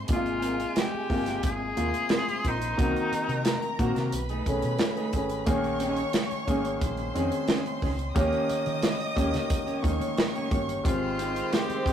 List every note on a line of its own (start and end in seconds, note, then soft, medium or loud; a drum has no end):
0.00 0.09 C3 medium
0.00 0.09 G#3 medium
0.00 0.09 A#3 medium
0.00 0.12 F4 medium
0.00 0.12 G5 medium
0.08 0.64 G#1 loud
0.08 0.75 C3 medium
0.08 1.74 G#3 medium
0.08 0.75 G#3 medium
0.08 0.75 A#3 medium
0.08 0.16 D#4 medium
0.08 1.74 G#5 medium
0.08 kick loud
0.08 closed hi-hat loud
0.12 0.80 F4 medium
0.12 0.78 F4 medium
0.26 closed hi-hat soft
0.42 0.55 C4 medium
0.42 0.56 F4 medium
0.42 0.56 A#4 medium
0.42 closed hi-hat medium
0.60 closed hi-hat soft
0.76 1.44 G4 medium
0.76 muted clean electric guitar stroke soft
0.76 snare medium
0.76 closed hi-hat medium
0.94 muted fingered electric bass stroke soft
1.09 1.38 G1 medium
1.09 1.54 C3 medium
1.09 1.54 G#3 medium
1.09 1.54 A#3 medium
1.09 1.20 C4 medium
1.09 1.20 F4 medium
1.09 1.54 F4 medium
1.09 1.21 A#4 medium
1.09 kick medium
1.09 open hi-hat soft
1.26 snare soft
1.26 closed hi-hat soft
1.43 1.71 G#1 medium
1.43 2.50 G#4 loud
1.43 kick medium
1.43 closed hi-hat medium
1.60 muted clean electric guitar stroke soft
1.76 1.91 D#2 medium
1.76 2.42 C3 medium
1.76 2.42 G#3 medium
1.76 2.43 A#3 medium
1.76 1.90 C4 medium
1.76 2.43 F4 medium
1.76 1.91 F4 medium
1.76 1.91 A#4 medium
1.76 2.77 C5 medium
1.76 2.77 C6 medium
1.76 closed hi-hat medium
1.94 muted clean electric guitar stroke soft
1.94 closed hi-hat soft
2.09 2.23 C4 medium
2.09 2.24 F4 medium
2.09 2.24 A#4 medium
2.09 snare loud
2.09 closed hi-hat medium
2.27 muted clean electric guitar stroke soft
2.27 closed hi-hat soft
2.44 2.72 A#1 medium
2.44 2.54 C4 medium
2.44 2.55 F4 medium
2.44 2.55 A#4 medium
2.44 kick medium
2.44 closed hi-hat medium
2.48 3.81 D#4 medium
2.62 closed hi-hat medium
2.77 2.92 C2 loud
2.77 2.84 C#3 medium
2.77 3.43 A#3 medium
2.77 3.43 C4 medium
2.77 3.09 D#4 medium
2.77 3.44 F#4 medium
2.77 3.09 F#4 medium
2.77 3.10 A#4 medium
2.77 4.10 A#4 medium
2.77 4.10 A#5 medium
2.77 kick loud
2.77 closed hi-hat medium
2.84 3.47 D#3 medium
2.96 closed hi-hat soft
3.12 muted fingered electric bass stroke soft
3.12 closed hi-hat medium
3.28 3.56 C3 medium
3.28 muted clean electric guitar stroke soft
3.28 closed hi-hat soft
3.45 snare medium
3.45 closed hi-hat medium
3.62 muted clean electric guitar stroke soft
3.62 closed hi-hat soft
3.79 3.93 A#2 medium
3.79 4.13 D#3 medium
3.79 4.13 A#3 medium
3.79 4.13 C4 medium
3.79 3.92 D#4 medium
3.79 3.92 F#4 medium
3.79 4.13 F#4 loud
3.79 3.92 A#4 medium
3.79 kick medium
3.79 closed hi-hat medium
3.96 4.10 C3 medium
3.96 muted clean electric guitar stroke soft
3.96 snare soft
3.96 closed hi-hat soft
4.12 4.40 B1 loud
4.12 5.45 B4 medium
4.12 5.45 B5 medium
4.12 muted clean electric guitar stroke soft
4.12 closed hi-hat medium
4.29 4.43 A3 medium
4.29 4.43 D#4 medium
4.29 4.42 G#4 medium
4.29 closed hi-hat soft
4.46 4.60 B1 medium
4.46 4.90 D#3 medium
4.46 4.90 A3 medium
4.46 4.90 C#4 medium
4.46 4.90 G#4 medium
4.46 muted clean electric guitar stroke soft
4.46 kick medium
4.46 closed hi-hat medium
4.62 4.77 B2 loud
4.62 muted clean electric guitar stroke soft
4.62 closed hi-hat medium
4.79 muted clean electric guitar stroke soft
4.79 snare loud
4.79 closed hi-hat medium
4.97 5.10 A3 medium
4.97 5.10 D#4 medium
4.97 5.10 G#4 medium
4.97 closed hi-hat soft
5.13 5.47 G#1 medium
5.13 5.35 D#3 medium
5.13 5.36 A3 medium
5.13 5.36 C#4 medium
5.13 5.36 G#4 medium
5.13 muted clean electric guitar stroke soft
5.13 kick medium
5.13 closed hi-hat medium
5.29 muted clean electric guitar stroke soft
5.29 closed hi-hat soft
5.46 6.02 A#1 loud
5.46 6.12 D#3 loud
5.46 6.12 A#3 loud
5.46 6.12 C#4 medium
5.46 6.12 G#4 loud
5.46 6.79 C#5 medium
5.46 6.78 C#6 medium
5.46 kick loud
5.46 closed hi-hat medium
5.64 closed hi-hat soft
5.80 6.00 C#4 medium
5.80 6.01 D#4 medium
5.80 6.01 G#4 medium
5.80 closed hi-hat medium
5.96 closed hi-hat soft
6.13 snare loud
6.13 closed hi-hat medium
6.31 muted fingered electric bass stroke soft
6.31 closed hi-hat soft
6.47 6.75 G#1 medium
6.47 6.91 D#3 medium
6.47 6.92 A#3 medium
6.47 6.58 C#4 medium
6.47 6.92 C#4 medium
6.47 6.58 D#4 medium
6.47 6.92 G#4 loud
6.47 6.59 G#4 medium
6.47 kick medium
6.47 closed hi-hat medium
6.65 muted clean electric guitar stroke soft
6.65 closed hi-hat soft
6.80 7.09 A#1 loud
6.80 8.12 C5 medium
6.80 8.13 C6 medium
6.80 kick medium
6.80 closed hi-hat medium
6.97 muted clean electric guitar stroke soft
6.97 closed hi-hat soft
7.14 7.29 F2 medium
7.14 7.80 D#3 medium
7.14 7.80 C4 medium
7.14 7.28 C#4 medium
7.14 7.80 C#4 medium
7.14 7.28 D#4 medium
7.14 7.80 G#4 medium
7.14 7.28 G#4 medium
7.14 closed hi-hat medium
7.32 muted clean electric guitar stroke soft
7.32 closed hi-hat medium
7.48 7.61 C#4 medium
7.48 7.62 D#4 medium
7.48 7.62 G#4 medium
7.48 snare loud
7.48 closed hi-hat medium
7.66 closed hi-hat soft
7.82 8.10 C#2 medium
7.82 7.92 C#4 medium
7.82 7.93 D#4 medium
7.82 7.93 G#4 medium
7.82 kick medium
7.82 open hi-hat soft
7.99 muted clean electric guitar stroke soft
7.99 closed hi-hat medium
8.15 8.30 D#2 loud
8.15 8.81 D#3 loud
8.15 8.47 A#3 medium
8.15 8.81 A#3 loud
8.15 8.81 C#4 loud
8.15 8.47 C#4 medium
8.15 8.81 G4 loud
8.15 8.47 G4 medium
8.15 9.81 D#5 medium
8.15 9.81 D#6 medium
8.15 kick loud
8.15 closed hi-hat loud
8.33 closed hi-hat soft
8.50 muted fingered electric bass stroke soft
8.50 closed hi-hat medium
8.66 8.94 D#3 medium
8.66 muted clean electric guitar stroke soft
8.66 closed hi-hat soft
8.82 snare medium
8.82 closed hi-hat medium
9.00 muted clean electric guitar stroke soft
9.00 closed hi-hat soft
9.16 9.35 D#2 medium
9.16 9.60 D#3 medium
9.16 9.29 A#3 medium
9.16 9.60 A#3 medium
9.16 9.29 C#4 medium
9.16 9.60 C#4 medium
9.16 9.60 G4 loud
9.16 9.30 G4 medium
9.16 kick medium
9.16 closed hi-hat medium
9.34 9.61 D#3 medium
9.34 muted clean electric guitar stroke soft
9.34 snare soft
9.34 closed hi-hat medium
9.50 muted clean electric guitar stroke soft
9.50 kick loud
9.50 closed hi-hat medium
9.66 9.80 A#3 medium
9.66 9.80 C#4 medium
9.66 9.80 G4 medium
9.66 closed hi-hat soft
9.82 9.98 D#2 medium
9.82 10.27 D#3 medium
9.82 10.27 A#3 medium
9.82 10.27 C#4 medium
9.82 10.27 D#4 medium
9.82 10.82 C#5 medium
9.82 10.83 C#6 medium
9.82 kick medium
9.82 closed hi-hat medium
10.00 10.14 D#3 medium
10.00 muted clean electric guitar stroke soft
10.00 closed hi-hat soft
10.18 snare loud
10.18 closed hi-hat medium
10.35 10.48 A#3 medium
10.35 10.48 C#4 medium
10.35 10.47 G4 medium
10.35 closed hi-hat soft
10.51 10.79 G1 medium
10.51 10.73 D#3 medium
10.51 10.73 A#3 medium
10.51 10.73 C#4 medium
10.51 10.73 G4 medium
10.51 muted clean electric guitar stroke soft
10.51 kick medium
10.51 closed hi-hat medium
10.69 muted clean electric guitar stroke soft
10.69 closed hi-hat soft
10.84 11.40 G#1 loud
10.84 11.49 D#3 medium
10.84 11.93 D#3 medium
10.84 11.50 G#3 medium
10.84 11.93 G#3 medium
10.84 11.50 C4 medium
10.84 11.93 C4 medium
10.84 11.55 F4 medium
10.84 11.50 G4 loud
10.84 11.93 C5 medium
10.84 11.93 C6 medium
10.84 kick loud
10.84 closed hi-hat medium
11.19 11.31 C4 medium
11.19 11.32 D#4 medium
11.19 11.32 G4 medium
11.19 closed hi-hat medium
11.36 closed hi-hat soft
11.52 11.93 G4 medium
11.52 muted clean electric guitar stroke soft
11.52 snare medium
11.52 closed hi-hat medium
11.69 muted fingered electric bass stroke soft
11.69 closed hi-hat soft
11.85 11.93 G1 medium
11.85 11.93 D#3 medium
11.85 11.93 G#3 medium
11.85 11.93 C4 medium
11.85 11.93 D#4 medium
11.85 11.93 G4 medium
11.85 kick medium
11.85 closed hi-hat medium